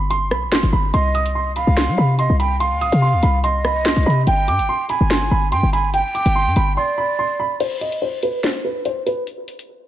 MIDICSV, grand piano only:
0, 0, Header, 1, 2, 480
1, 0, Start_track
1, 0, Tempo, 416667
1, 1081, Time_signature, 4, 2, 24, 8
1, 11381, End_track
2, 0, Start_track
2, 0, Title_t, "Grand piano"
2, 0, Program_c, 0, 0
2, 120, Note_on_c, 0, 84, 91
2, 302, Note_off_c, 0, 84, 0
2, 357, Note_on_c, 0, 83, 80
2, 540, Note_off_c, 0, 83, 0
2, 601, Note_on_c, 0, 84, 85
2, 782, Note_off_c, 0, 84, 0
2, 838, Note_on_c, 0, 83, 82
2, 1021, Note_off_c, 0, 83, 0
2, 1079, Note_on_c, 0, 84, 101
2, 1261, Note_off_c, 0, 84, 0
2, 1320, Note_on_c, 0, 87, 87
2, 1502, Note_off_c, 0, 87, 0
2, 1557, Note_on_c, 0, 84, 76
2, 1740, Note_off_c, 0, 84, 0
2, 1800, Note_on_c, 0, 83, 77
2, 1982, Note_off_c, 0, 83, 0
2, 2037, Note_on_c, 0, 84, 92
2, 2220, Note_off_c, 0, 84, 0
2, 2280, Note_on_c, 0, 83, 80
2, 2462, Note_off_c, 0, 83, 0
2, 2520, Note_on_c, 0, 84, 84
2, 2701, Note_off_c, 0, 84, 0
2, 2759, Note_on_c, 0, 83, 84
2, 2941, Note_off_c, 0, 83, 0
2, 2998, Note_on_c, 0, 84, 97
2, 3181, Note_off_c, 0, 84, 0
2, 3240, Note_on_c, 0, 87, 88
2, 3422, Note_off_c, 0, 87, 0
2, 3480, Note_on_c, 0, 84, 81
2, 3662, Note_off_c, 0, 84, 0
2, 3720, Note_on_c, 0, 83, 83
2, 3902, Note_off_c, 0, 83, 0
2, 3961, Note_on_c, 0, 84, 84
2, 4142, Note_off_c, 0, 84, 0
2, 4201, Note_on_c, 0, 83, 82
2, 4382, Note_off_c, 0, 83, 0
2, 4442, Note_on_c, 0, 84, 85
2, 4623, Note_off_c, 0, 84, 0
2, 4679, Note_on_c, 0, 83, 93
2, 4861, Note_off_c, 0, 83, 0
2, 4921, Note_on_c, 0, 79, 97
2, 5103, Note_off_c, 0, 79, 0
2, 5160, Note_on_c, 0, 86, 85
2, 5342, Note_off_c, 0, 86, 0
2, 5402, Note_on_c, 0, 84, 81
2, 5583, Note_off_c, 0, 84, 0
2, 5640, Note_on_c, 0, 83, 86
2, 5822, Note_off_c, 0, 83, 0
2, 5880, Note_on_c, 0, 84, 82
2, 6062, Note_off_c, 0, 84, 0
2, 6120, Note_on_c, 0, 83, 86
2, 6302, Note_off_c, 0, 83, 0
2, 6359, Note_on_c, 0, 84, 81
2, 6541, Note_off_c, 0, 84, 0
2, 6601, Note_on_c, 0, 83, 93
2, 6782, Note_off_c, 0, 83, 0
2, 6839, Note_on_c, 0, 79, 91
2, 7021, Note_off_c, 0, 79, 0
2, 7081, Note_on_c, 0, 86, 75
2, 7262, Note_off_c, 0, 86, 0
2, 7320, Note_on_c, 0, 84, 87
2, 7502, Note_off_c, 0, 84, 0
2, 7560, Note_on_c, 0, 83, 82
2, 7742, Note_off_c, 0, 83, 0
2, 7800, Note_on_c, 0, 84, 92
2, 7982, Note_off_c, 0, 84, 0
2, 8038, Note_on_c, 0, 83, 80
2, 8221, Note_off_c, 0, 83, 0
2, 8281, Note_on_c, 0, 84, 85
2, 8463, Note_off_c, 0, 84, 0
2, 8519, Note_on_c, 0, 83, 81
2, 8701, Note_off_c, 0, 83, 0
2, 8759, Note_on_c, 0, 72, 93
2, 8941, Note_off_c, 0, 72, 0
2, 8999, Note_on_c, 0, 75, 84
2, 9181, Note_off_c, 0, 75, 0
2, 9237, Note_on_c, 0, 72, 73
2, 9420, Note_off_c, 0, 72, 0
2, 9480, Note_on_c, 0, 71, 77
2, 9662, Note_off_c, 0, 71, 0
2, 9716, Note_on_c, 0, 72, 87
2, 9899, Note_off_c, 0, 72, 0
2, 9959, Note_on_c, 0, 71, 74
2, 10141, Note_off_c, 0, 71, 0
2, 10199, Note_on_c, 0, 72, 84
2, 10381, Note_off_c, 0, 72, 0
2, 10441, Note_on_c, 0, 71, 85
2, 10623, Note_off_c, 0, 71, 0
2, 11381, End_track
0, 0, End_of_file